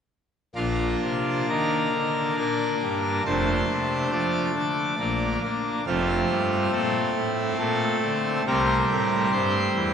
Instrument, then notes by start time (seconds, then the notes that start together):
pipe organ
0.56 A#1 A#2 A#3 D4 F4
1.02 C3
1.49 D#3 A#4
1.94 D3
2.37 A#2 A#4
2.82 G2
3.26 F1 F2 A3 D4 C5
3.69 C3
4.12 F3 D5
4.55 D3
4.99 A#1 A#2 A#3 D4
5.43 A#3
5.87 F1 F2 A3 C4 F4
6.30 G2
6.73 A#2 A4
7.16 A2
7.59 A#2 A4
8.03 D3
8.47 C2 C3 G3 C4 A#4
8.90 A2
9.32 G2 C5
9.74 E2